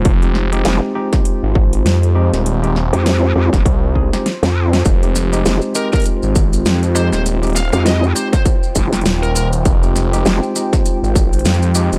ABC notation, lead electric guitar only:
X:1
M:4/4
L:1/16
Q:"Swing 16ths" 1/4=100
K:Fm
V:1 name="Lead electric guitar"
z16 | z16 | z6 B B z6 c c | z2 f f e z c c z4 z B B z |
z16 |]